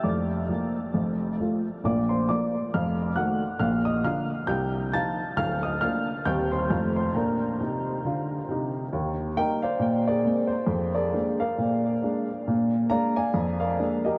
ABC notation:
X:1
M:4/4
L:1/8
Q:"Swing" 1/4=135
K:Bb
V:1 name="Upright piano"
[dd']6- [dd'] z | [dd'] [cc'] [dd']2 [ff']2 [_g_g']2 | [ff'] [ee'] [ff']2 [gg']2 [aa']2 | [ff'] [ee'] [ff']2 [gg'] [cc']2 [cc'] |
[Bb]6- [Bb] z | [K:Bbmix] z2 [Beg] [cdf]2 [ABd]2 c- | c [ABd]2 [Bdf]4 z | z2 [dfb] [dfa]2 [Bdf]2 [GBe] |]
V:2 name="Upright piano" clef=bass
[F,,,F,,]2 [F,B,F]2 [F,,,F,,]2 [F,A,F]2 | [B,,,B,,]2 [F,B,F]2 [F,,,F,,]2 [E,A,_G]2 | [B,,,B,,]2 [D,B,F]2 [C,,C,]2 [F,EF]2 | [D,,,D,,]2 [B,DF]2 [E,,,E,,G,CE]2 [F,,,F,,F,A,C]2 |
[B,,D]2 [C,E]2 [D,F]2 [C,E]2 | [K:Bbmix] E,,2 [G,B,E]2 B,,2 [A,B,C]2 | F,,2 [A,B,D]2 B,,2 [A,B,D]2 | B,,2 [A,B,D]2 F,,2 [A,B,D]2 |]